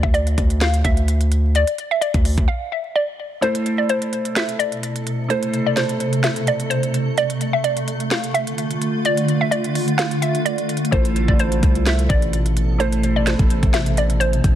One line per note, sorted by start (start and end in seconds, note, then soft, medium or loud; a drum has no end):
0.03 0.36 D2 loud
0.03 0.14 E5 medium
0.03 kick loud
0.14 0.58 D5 medium
0.14 closed hi-hat medium
0.27 closed hi-hat medium
0.38 0.83 D2 loud
0.38 kick medium
0.38 closed hi-hat medium
0.50 closed hi-hat medium
0.61 0.83 F5 medium
0.61 snare loud
0.61 closed hi-hat medium
0.74 closed hi-hat medium
0.84 1.64 D2 loud
0.84 1.51 E5 medium
0.84 kick loud
0.84 closed hi-hat medium
0.97 closed hi-hat medium
1.08 closed hi-hat medium
1.21 closed hi-hat medium
1.32 closed hi-hat medium
1.55 1.89 D5 loud
1.55 closed hi-hat medium
1.67 closed hi-hat medium
1.78 closed hi-hat medium
1.91 2.01 E5 medium
2.01 2.46 D5 medium
2.01 closed hi-hat medium
2.14 2.37 D2 loud
2.14 kick loud
2.14 closed hi-hat medium
2.25 closed hi-hat medium
2.25 open hi-hat medium
2.38 2.48 D2 loud
2.38 kick medium
2.38 closed hi-hat soft
2.48 2.70 F5 medium
2.72 2.94 E5 medium
2.96 3.18 D5 medium
3.41 5.28 B2 medium
3.41 7.14 C3 medium
3.41 5.26 A3 medium
3.41 5.26 E4 medium
3.41 7.14 A4 medium
3.41 5.26 A4 medium
3.41 3.76 C5 loud
3.41 5.27 C5 medium
3.41 closed hi-hat medium
3.55 closed hi-hat medium
3.66 closed hi-hat medium
3.78 3.89 D5 medium
3.89 4.34 C5 medium
3.89 closed hi-hat medium
4.02 closed hi-hat medium
4.13 closed hi-hat medium
4.25 closed hi-hat medium
4.36 4.58 E5 medium
4.36 snare loud
4.36 closed hi-hat medium
4.49 closed hi-hat medium
4.59 5.26 D5 medium
4.59 closed hi-hat medium
4.72 closed hi-hat medium
4.83 closed hi-hat medium
4.96 closed hi-hat medium
5.07 closed hi-hat medium
5.28 7.13 A3 medium
5.28 10.89 A3 medium
5.28 7.13 E4 medium
5.28 7.14 A4 medium
5.28 5.64 C5 loud
5.28 7.14 C5 medium
5.28 closed hi-hat medium
5.43 closed hi-hat medium
5.54 closed hi-hat medium
5.66 5.77 D5 medium
5.76 6.21 C5 medium
5.76 snare medium
5.76 closed hi-hat medium
5.89 closed hi-hat medium
6.00 closed hi-hat medium
6.13 closed hi-hat medium
6.23 6.46 E5 medium
6.23 snare loud
6.23 closed hi-hat medium
6.36 closed hi-hat medium
6.47 6.70 D5 medium
6.47 closed hi-hat medium
6.60 closed hi-hat medium
6.70 6.92 C5 medium
6.70 closed hi-hat medium
6.83 closed hi-hat medium
6.94 closed hi-hat medium
7.17 10.89 D3 medium
7.17 10.89 F4 medium
7.17 7.51 D5 loud
7.17 closed hi-hat medium
7.30 closed hi-hat medium
7.41 closed hi-hat medium
7.53 7.64 E5 medium
7.64 8.08 D5 medium
7.64 closed hi-hat medium
7.77 closed hi-hat medium
7.88 closed hi-hat medium
8.00 closed hi-hat medium
8.11 8.33 F5 medium
8.11 snare loud
8.11 closed hi-hat medium
8.24 closed hi-hat medium
8.34 9.01 E5 medium
8.34 closed hi-hat medium
8.47 closed hi-hat medium
8.58 closed hi-hat medium
8.71 closed hi-hat medium
8.82 closed hi-hat medium
9.05 9.39 D5 loud
9.05 closed hi-hat medium
9.17 closed hi-hat medium
9.28 closed hi-hat medium
9.41 9.51 E5 medium
9.51 9.96 D5 medium
9.51 closed hi-hat medium
9.64 closed hi-hat medium
9.75 closed hi-hat medium
9.75 open hi-hat medium
9.88 closed hi-hat soft
9.98 10.20 F5 medium
9.98 snare loud
9.98 closed hi-hat medium
10.11 closed hi-hat medium
10.22 10.44 E5 medium
10.22 closed hi-hat medium
10.35 closed hi-hat medium
10.45 10.68 D5 medium
10.45 closed hi-hat medium
10.58 closed hi-hat soft
10.69 closed hi-hat medium
10.77 closed hi-hat medium
10.85 closed hi-hat medium
10.91 11.27 A1 loud
10.91 14.55 B2 medium
10.91 14.55 C3 medium
10.91 12.76 A3 medium
10.91 12.76 E4 medium
10.91 12.78 A4 medium
10.91 12.76 A4 medium
10.91 11.26 C5 loud
10.91 12.77 C5 medium
10.91 kick loud
10.91 closed hi-hat medium
11.05 closed hi-hat medium
11.16 closed hi-hat medium
11.28 11.61 A1 loud
11.28 11.39 D5 medium
11.28 kick medium
11.39 11.84 C5 medium
11.39 closed hi-hat medium
11.52 closed hi-hat medium
11.63 12.08 C2 loud
11.63 kick medium
11.63 closed hi-hat medium
11.75 closed hi-hat medium
11.86 12.09 E5 medium
11.86 snare loud
11.86 closed hi-hat medium
11.99 closed hi-hat medium
12.09 13.35 A1 loud
12.09 12.76 D5 medium
12.09 kick loud
12.09 closed hi-hat medium
12.22 closed hi-hat medium
12.33 closed hi-hat medium
12.46 closed hi-hat medium
12.57 closed hi-hat medium
12.78 14.55 A3 medium
12.78 14.55 E4 medium
12.78 14.55 A4 medium
12.78 13.14 C5 loud
12.78 14.55 C5 medium
12.78 14.55 G#5 medium
12.78 closed hi-hat medium
12.93 closed hi-hat medium
13.04 closed hi-hat medium
13.16 13.26 D5 medium
13.26 13.71 C5 medium
13.26 snare medium
13.26 closed hi-hat medium
13.39 13.62 A1 loud
13.39 kick loud
13.39 closed hi-hat medium
13.50 closed hi-hat medium
13.63 14.41 A1 loud
13.63 kick medium
13.63 closed hi-hat medium
13.73 13.96 E5 medium
13.73 snare loud
13.73 closed hi-hat medium
13.86 closed hi-hat medium
13.97 14.20 D5 medium
13.97 closed hi-hat medium
14.10 closed hi-hat medium
14.20 14.42 C5 medium
14.20 closed hi-hat medium
14.33 closed hi-hat medium
14.44 14.55 A1 loud
14.44 kick medium
14.44 closed hi-hat medium